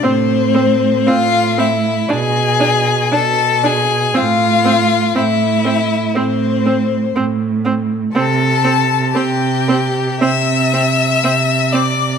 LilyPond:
<<
  \new Staff \with { instrumentName = "Violin" } { \time 4/4 \key a \minor \tempo 4 = 60 c''4 f''8 e''8 gis''4 a''8 gis''8 | f''4 e''4 c''4 r4 | \key c \major a''4 g''4 e'''4. d'''8 | }
  \new Staff \with { instrumentName = "Violin" } { \time 4/4 \key a \minor c'4 f'8 e'8 gis'4 a'8 gis'8 | f'4 e'4 c'4 r4 | \key c \major a'4 g'4 e''4. d''8 | }
  \new Staff \with { instrumentName = "Viola" } { \time 4/4 \key a \minor c'8 c'8 c'8 c'8 d'8 d'8 d'8 d'8 | c'8 c'8 c'8 c'8 c'8 c'8 c'8 c'8 | \key c \major c'8 c'8 c'8 c'8 c'8 c'8 c'8 c'8 | }
  \new Staff \with { instrumentName = "Cello" } { \clef bass \time 4/4 \key a \minor a,4 a,4 b,4 b,4 | a,4 a,4 a,4 a,4 | \key c \major c4 c4 c4 c4 | }
>>